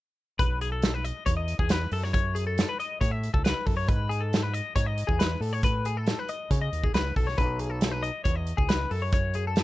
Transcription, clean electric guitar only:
0, 0, Header, 1, 2, 480
1, 0, Start_track
1, 0, Tempo, 436999
1, 425, Time_signature, 4, 2, 24, 8
1, 10581, End_track
2, 0, Start_track
2, 0, Title_t, "Clean electric guitar"
2, 0, Program_c, 0, 27
2, 431, Note_on_c, 0, 71, 86
2, 669, Note_off_c, 0, 71, 0
2, 675, Note_on_c, 0, 68, 73
2, 786, Note_off_c, 0, 68, 0
2, 791, Note_on_c, 0, 69, 69
2, 1033, Note_off_c, 0, 69, 0
2, 1033, Note_on_c, 0, 71, 67
2, 1148, Note_off_c, 0, 71, 0
2, 1148, Note_on_c, 0, 75, 67
2, 1379, Note_off_c, 0, 75, 0
2, 1383, Note_on_c, 0, 73, 78
2, 1498, Note_off_c, 0, 73, 0
2, 1502, Note_on_c, 0, 75, 69
2, 1745, Note_off_c, 0, 75, 0
2, 1749, Note_on_c, 0, 68, 67
2, 1876, Note_off_c, 0, 68, 0
2, 1876, Note_on_c, 0, 71, 75
2, 2113, Note_off_c, 0, 71, 0
2, 2119, Note_on_c, 0, 69, 73
2, 2235, Note_off_c, 0, 69, 0
2, 2235, Note_on_c, 0, 73, 70
2, 2330, Note_off_c, 0, 73, 0
2, 2344, Note_on_c, 0, 73, 87
2, 2581, Note_on_c, 0, 68, 72
2, 2588, Note_off_c, 0, 73, 0
2, 2706, Note_off_c, 0, 68, 0
2, 2710, Note_on_c, 0, 69, 67
2, 2951, Note_off_c, 0, 69, 0
2, 2952, Note_on_c, 0, 71, 67
2, 3068, Note_off_c, 0, 71, 0
2, 3072, Note_on_c, 0, 75, 73
2, 3299, Note_off_c, 0, 75, 0
2, 3303, Note_on_c, 0, 73, 76
2, 3421, Note_off_c, 0, 73, 0
2, 3421, Note_on_c, 0, 76, 68
2, 3662, Note_off_c, 0, 76, 0
2, 3666, Note_on_c, 0, 69, 74
2, 3780, Note_off_c, 0, 69, 0
2, 3784, Note_on_c, 0, 71, 76
2, 4020, Note_off_c, 0, 71, 0
2, 4020, Note_on_c, 0, 69, 74
2, 4134, Note_off_c, 0, 69, 0
2, 4139, Note_on_c, 0, 73, 70
2, 4264, Note_off_c, 0, 73, 0
2, 4264, Note_on_c, 0, 71, 91
2, 4497, Note_on_c, 0, 68, 69
2, 4507, Note_off_c, 0, 71, 0
2, 4620, Note_on_c, 0, 69, 69
2, 4624, Note_off_c, 0, 68, 0
2, 4860, Note_off_c, 0, 69, 0
2, 4860, Note_on_c, 0, 71, 70
2, 4981, Note_off_c, 0, 71, 0
2, 4981, Note_on_c, 0, 75, 73
2, 5220, Note_off_c, 0, 75, 0
2, 5225, Note_on_c, 0, 73, 83
2, 5344, Note_off_c, 0, 73, 0
2, 5344, Note_on_c, 0, 75, 70
2, 5572, Note_on_c, 0, 68, 70
2, 5587, Note_off_c, 0, 75, 0
2, 5701, Note_off_c, 0, 68, 0
2, 5703, Note_on_c, 0, 71, 78
2, 5944, Note_off_c, 0, 71, 0
2, 5944, Note_on_c, 0, 69, 70
2, 6072, Note_off_c, 0, 69, 0
2, 6072, Note_on_c, 0, 73, 64
2, 6190, Note_off_c, 0, 73, 0
2, 6197, Note_on_c, 0, 71, 84
2, 6432, Note_off_c, 0, 71, 0
2, 6435, Note_on_c, 0, 68, 72
2, 6558, Note_off_c, 0, 68, 0
2, 6558, Note_on_c, 0, 69, 66
2, 6799, Note_off_c, 0, 69, 0
2, 6799, Note_on_c, 0, 71, 64
2, 6911, Note_on_c, 0, 75, 71
2, 6913, Note_off_c, 0, 71, 0
2, 7149, Note_off_c, 0, 75, 0
2, 7149, Note_on_c, 0, 73, 77
2, 7262, Note_off_c, 0, 73, 0
2, 7266, Note_on_c, 0, 75, 66
2, 7506, Note_off_c, 0, 75, 0
2, 7511, Note_on_c, 0, 68, 69
2, 7623, Note_off_c, 0, 68, 0
2, 7628, Note_on_c, 0, 71, 74
2, 7866, Note_off_c, 0, 71, 0
2, 7870, Note_on_c, 0, 69, 68
2, 7984, Note_on_c, 0, 73, 65
2, 7988, Note_off_c, 0, 69, 0
2, 8103, Note_on_c, 0, 71, 87
2, 8105, Note_off_c, 0, 73, 0
2, 8346, Note_off_c, 0, 71, 0
2, 8346, Note_on_c, 0, 68, 73
2, 8456, Note_off_c, 0, 68, 0
2, 8456, Note_on_c, 0, 69, 69
2, 8694, Note_off_c, 0, 69, 0
2, 8694, Note_on_c, 0, 71, 69
2, 8816, Note_on_c, 0, 75, 67
2, 8820, Note_off_c, 0, 71, 0
2, 9048, Note_off_c, 0, 75, 0
2, 9053, Note_on_c, 0, 73, 75
2, 9178, Note_off_c, 0, 73, 0
2, 9178, Note_on_c, 0, 75, 69
2, 9417, Note_on_c, 0, 68, 68
2, 9421, Note_off_c, 0, 75, 0
2, 9540, Note_off_c, 0, 68, 0
2, 9543, Note_on_c, 0, 71, 74
2, 9783, Note_off_c, 0, 71, 0
2, 9788, Note_on_c, 0, 69, 66
2, 9906, Note_off_c, 0, 69, 0
2, 9907, Note_on_c, 0, 73, 67
2, 10021, Note_off_c, 0, 73, 0
2, 10034, Note_on_c, 0, 73, 85
2, 10269, Note_off_c, 0, 73, 0
2, 10273, Note_on_c, 0, 68, 72
2, 10388, Note_off_c, 0, 68, 0
2, 10405, Note_on_c, 0, 69, 68
2, 10581, Note_off_c, 0, 69, 0
2, 10581, End_track
0, 0, End_of_file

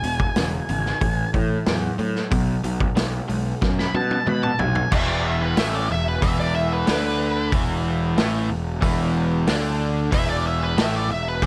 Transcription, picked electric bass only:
0, 0, Header, 1, 2, 480
1, 0, Start_track
1, 0, Tempo, 650759
1, 1708, Time_signature, 4, 2, 24, 8
1, 8455, End_track
2, 0, Start_track
2, 0, Title_t, "Picked electric bass"
2, 0, Program_c, 0, 34
2, 23, Note_on_c, 0, 28, 91
2, 192, Note_off_c, 0, 28, 0
2, 267, Note_on_c, 0, 28, 86
2, 434, Note_off_c, 0, 28, 0
2, 512, Note_on_c, 0, 32, 86
2, 678, Note_off_c, 0, 32, 0
2, 747, Note_on_c, 0, 33, 88
2, 915, Note_off_c, 0, 33, 0
2, 989, Note_on_c, 0, 45, 85
2, 1156, Note_off_c, 0, 45, 0
2, 1231, Note_on_c, 0, 40, 81
2, 1397, Note_off_c, 0, 40, 0
2, 1467, Note_on_c, 0, 45, 84
2, 1634, Note_off_c, 0, 45, 0
2, 1709, Note_on_c, 0, 35, 97
2, 1876, Note_off_c, 0, 35, 0
2, 1947, Note_on_c, 0, 35, 85
2, 2115, Note_off_c, 0, 35, 0
2, 2186, Note_on_c, 0, 35, 93
2, 2354, Note_off_c, 0, 35, 0
2, 2430, Note_on_c, 0, 35, 89
2, 2597, Note_off_c, 0, 35, 0
2, 2673, Note_on_c, 0, 42, 83
2, 2839, Note_off_c, 0, 42, 0
2, 2909, Note_on_c, 0, 47, 83
2, 3076, Note_off_c, 0, 47, 0
2, 3149, Note_on_c, 0, 47, 76
2, 3316, Note_off_c, 0, 47, 0
2, 3387, Note_on_c, 0, 35, 86
2, 3555, Note_off_c, 0, 35, 0
2, 3630, Note_on_c, 0, 28, 93
2, 4080, Note_off_c, 0, 28, 0
2, 4112, Note_on_c, 0, 33, 87
2, 4334, Note_off_c, 0, 33, 0
2, 4351, Note_on_c, 0, 28, 74
2, 4573, Note_off_c, 0, 28, 0
2, 4590, Note_on_c, 0, 28, 94
2, 5040, Note_off_c, 0, 28, 0
2, 5075, Note_on_c, 0, 38, 86
2, 5522, Note_off_c, 0, 38, 0
2, 5550, Note_on_c, 0, 28, 99
2, 6000, Note_off_c, 0, 28, 0
2, 6031, Note_on_c, 0, 33, 96
2, 6253, Note_off_c, 0, 33, 0
2, 6273, Note_on_c, 0, 28, 73
2, 6494, Note_off_c, 0, 28, 0
2, 6507, Note_on_c, 0, 28, 90
2, 6958, Note_off_c, 0, 28, 0
2, 6986, Note_on_c, 0, 38, 90
2, 7437, Note_off_c, 0, 38, 0
2, 7468, Note_on_c, 0, 28, 104
2, 7918, Note_off_c, 0, 28, 0
2, 7942, Note_on_c, 0, 33, 92
2, 8168, Note_off_c, 0, 33, 0
2, 8178, Note_on_c, 0, 28, 75
2, 8405, Note_off_c, 0, 28, 0
2, 8426, Note_on_c, 0, 28, 93
2, 8455, Note_off_c, 0, 28, 0
2, 8455, End_track
0, 0, End_of_file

